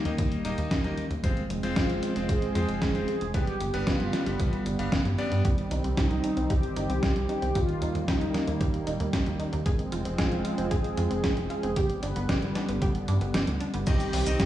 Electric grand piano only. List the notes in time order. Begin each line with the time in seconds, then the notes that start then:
0.05 A#3 D#4 G4 D#5
0.45 A#3 D#4 G4 D#5
0.84 A#3 D#4 G4 D#5
1.24 G#3 C4 F4 C5
1.63 G#3 C4 F4 C5
2.16 G#3 C4 F4 C5
2.55 G#3 C4 F4 C5
2.95 G#3 C4 F4 C5
3.34 G3 B3 D4 B4
3.74 G3 B3 D4 B4
4.26 G3 B3 D4 B4
4.79 G3 B3 D4 F5
5.18 G3 B3 D4 D5
13.87 C4 D#4 G4 D#5
14.27 C4 D#4 G4 D#5